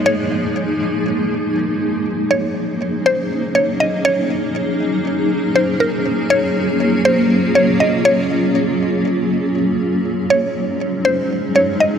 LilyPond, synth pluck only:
\new Staff \with { instrumentName = "Synth pluck" } { \time 4/4 \key ges \lydian \tempo 4 = 120 des''2. r4 | r8 des''4. c''4 des''8 ees''8 | des''2. c''8 bes'8 | r8 des''4. c''4 des''8 ees''8 |
des''2. r4 | r8 des''4. c''4 des''8 ees''8 | }